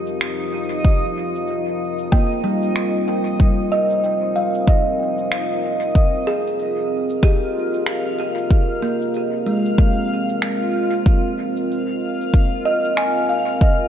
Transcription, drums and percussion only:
0.07 cabasa
0.20 finger snap, cabasa
0.71 cabasa
0.84 kick, cabasa
1.36 cabasa
1.47 cabasa
1.99 cabasa
2.12 kick, cabasa
2.63 cabasa
2.76 finger snap, cabasa
3.26 cabasa
3.40 kick, cabasa
3.90 cabasa
4.04 cabasa
4.54 cabasa
4.67 kick, cabasa
5.18 cabasa
5.32 finger snap, cabasa
5.82 cabasa
5.95 kick, cabasa
6.47 cabasa
6.59 cabasa
7.10 cabasa
7.23 kick, cabasa
7.74 cabasa
7.87 finger snap, cabasa
8.38 cabasa
8.50 kick, cabasa
9.02 cabasa
9.15 cabasa
9.65 cabasa
9.78 kick, cabasa
10.29 cabasa
10.42 finger snap, cabasa
10.93 cabasa
11.06 kick, cabasa
11.56 cabasa
11.71 cabasa
12.21 cabasa
12.34 kick, cabasa
12.85 cabasa
12.97 finger snap, cabasa
13.48 cabasa
13.61 kick, cabasa

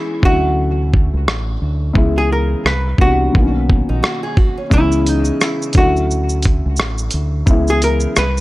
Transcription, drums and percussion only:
0.23 kick
0.94 kick
1.28 cross-stick
1.95 kick
2.66 cross-stick
2.98 kick
3.35 kick
3.70 kick
4.04 cross-stick
4.37 kick
4.71 kick, shaker
4.92 shaker
5.06 closed hi-hat, shaker
5.25 shaker
5.41 cross-stick, shaker
5.62 shaker
5.73 kick, closed hi-hat, shaker
5.96 shaker
6.11 shaker
6.29 shaker
6.42 kick, closed hi-hat, shaker
6.76 cross-stick, shaker
6.98 shaker
7.11 closed hi-hat, shaker
7.47 kick, shaker
7.67 shaker
7.82 closed hi-hat, shaker
8.00 shaker
8.16 cross-stick, shaker
8.37 shaker

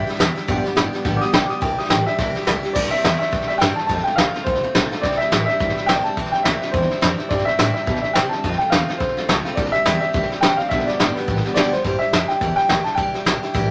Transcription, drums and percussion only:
0.09 snare
0.15 snare
0.20 snare, hi-hat pedal
0.37 snare
0.48 kick, snare
0.65 snare
0.77 snare, hi-hat pedal
0.94 snare
1.05 kick, snare
1.22 snare
1.33 snare, hi-hat pedal
1.50 snare
1.62 kick, snare
1.79 snare
1.85 snare
1.90 snare, hi-hat pedal
2.07 snare
2.19 kick, snare
2.36 snare
2.41 snare
2.47 snare, hi-hat pedal
2.64 snare
2.75 kick, snare, crash
2.84 snare
2.93 snare
3.04 snare, hi-hat pedal
3.22 snare
3.33 kick, snare
3.41 snare
3.50 snare
3.61 snare, hi-hat pedal
3.78 snare
3.89 kick, snare
3.99 snare
4.07 snare
4.18 snare, hi-hat pedal
4.35 snare
4.46 kick, snare
4.55 snare
4.63 snare
4.75 snare, hi-hat pedal
4.92 snare
5.03 kick, snare
5.12 snare
5.21 snare
5.32 snare, hi-hat pedal
5.49 snare
5.60 kick, snare
5.69 snare
5.77 snare
5.89 snare, hi-hat pedal
6.06 snare
6.17 kick, snare
6.26 snare
6.34 snare
6.45 snare, hi-hat pedal
6.62 snare
6.74 kick, snare
6.82 snare
6.91 snare
7.02 snare, hi-hat pedal
7.19 snare
7.30 kick, snare
7.39 snare
7.48 snare
7.59 snare, hi-hat pedal
7.76 snare
7.87 kick, snare
7.96 snare
8.04 snare
8.15 snare, hi-hat pedal
8.32 snare
8.44 kick, snare
8.53 snare
8.61 snare
8.72 snare, hi-hat pedal
8.89 snare
9.00 kick, snare
9.09 snare
9.17 snare
9.29 snare, hi-hat pedal
9.46 snare
9.57 kick, snare
9.66 snare
9.74 snare
9.86 snare, hi-hat pedal
10.03 snare
10.14 kick, snare
10.23 snare
10.31 snare
10.42 snare, hi-hat pedal
10.60 snare
10.71 kick, snare
10.80 snare
10.88 snare
11.00 snare, hi-hat pedal
11.17 snare
11.28 kick, snare
11.37 snare
11.45 snare
11.57 snare, hi-hat pedal
11.73 snare
11.85 kick, snare
12.02 snare
12.13 snare, hi-hat pedal
12.29 snare
12.41 kick, snare
12.58 snare
12.69 snare, hi-hat pedal
12.86 snare
12.97 kick, snare
13.15 snare
13.26 snare, hi-hat pedal
13.43 snare
13.55 kick, snare

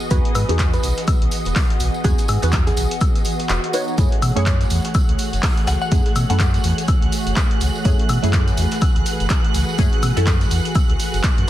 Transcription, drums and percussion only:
0.00 tambourine
0.11 kick, closed hi-hat, tambourine, shaker
0.25 closed hi-hat
0.35 open hi-hat, tambourine, high woodblock, shaker
0.49 closed hi-hat, tambourine
0.59 kick, snare, clap, closed hi-hat, tambourine, shaker
0.73 closed hi-hat, tambourine
0.83 open hi-hat, tambourine, shaker
0.97 snare, closed hi-hat, tambourine
1.08 kick, closed hi-hat, tambourine, high woodblock, shaker
1.22 closed hi-hat
1.31 open hi-hat, tambourine, shaker
1.45 closed hi-hat, tambourine
1.56 kick, snare, clap, closed hi-hat, open hi-hat, tambourine
1.70 snare, closed hi-hat
1.80 open hi-hat, tambourine, shaker
1.94 tambourine
2.04 kick, closed hi-hat, tambourine, shaker
2.18 closed hi-hat, tambourine, shaker
2.28 open hi-hat, tambourine, high woodblock
2.42 closed hi-hat, tambourine, shaker
2.52 kick, clap, closed hi-hat, tambourine, shaker
2.67 closed hi-hat, tambourine
2.77 open hi-hat, tambourine, shaker
2.91 closed hi-hat, tambourine
3.01 kick, closed hi-hat, tambourine, high woodblock, shaker
3.16 closed hi-hat, tambourine
3.25 open hi-hat, tambourine, shaker
3.39 closed hi-hat, tambourine
3.49 clap, closed hi-hat, tambourine, shaker
3.64 closed hi-hat
3.73 open hi-hat, tambourine, shaker
3.88 tambourine
3.98 kick, closed hi-hat, tambourine, shaker
4.12 closed hi-hat
4.22 open hi-hat, tambourine, high woodblock, shaker
4.36 closed hi-hat, tambourine
4.46 kick, snare, clap, closed hi-hat, tambourine, shaker
4.61 closed hi-hat, tambourine
4.70 open hi-hat, tambourine, shaker
4.85 snare, closed hi-hat, tambourine
4.95 kick, closed hi-hat, tambourine, high woodblock, shaker
5.09 closed hi-hat
5.19 open hi-hat, tambourine, shaker
5.33 closed hi-hat, tambourine
5.43 kick, snare, clap, closed hi-hat, open hi-hat, tambourine
5.57 snare, closed hi-hat
5.67 snare, open hi-hat, tambourine, shaker
5.81 tambourine
5.92 kick, closed hi-hat, tambourine, shaker
6.06 snare, closed hi-hat
6.16 open hi-hat, tambourine, high woodblock, shaker
6.30 closed hi-hat, tambourine
6.40 kick, snare, clap, closed hi-hat, tambourine, shaker
6.54 snare, closed hi-hat, tambourine
6.64 open hi-hat, tambourine, shaker
6.78 closed hi-hat, tambourine
6.88 kick, closed hi-hat, tambourine, high woodblock, shaker
7.02 closed hi-hat
7.12 open hi-hat, tambourine, shaker
7.27 closed hi-hat, tambourine
7.36 kick, snare, clap, closed hi-hat, tambourine, shaker
7.51 closed hi-hat
7.61 open hi-hat, tambourine, shaker
7.75 tambourine
7.85 kick, closed hi-hat, tambourine, shaker
7.99 closed hi-hat
8.09 open hi-hat, tambourine, high woodblock, shaker
8.24 closed hi-hat, tambourine
8.33 kick, snare, clap, closed hi-hat, tambourine, shaker
8.48 closed hi-hat, tambourine
8.57 open hi-hat, tambourine, shaker
8.71 snare, closed hi-hat, tambourine
8.81 kick, closed hi-hat, tambourine, high woodblock, shaker
8.96 closed hi-hat
9.06 open hi-hat, tambourine, shaker
9.20 closed hi-hat, tambourine
9.29 kick, clap, closed hi-hat, tambourine, shaker
9.44 closed hi-hat
9.54 open hi-hat, tambourine, shaker
9.69 tambourine
9.79 kick, closed hi-hat, tambourine, shaker
9.93 closed hi-hat
10.03 open hi-hat, tambourine, high woodblock, shaker
10.17 closed hi-hat, tambourine
10.27 kick, snare, clap, closed hi-hat, tambourine, shaker
10.41 snare, closed hi-hat, tambourine
10.51 open hi-hat, tambourine, shaker
10.65 closed hi-hat, tambourine
10.75 kick, closed hi-hat, tambourine, high woodblock, shaker
10.90 closed hi-hat
11.00 open hi-hat, tambourine, shaker
11.14 closed hi-hat, tambourine
11.23 kick, snare, clap, closed hi-hat, shaker
11.38 closed hi-hat

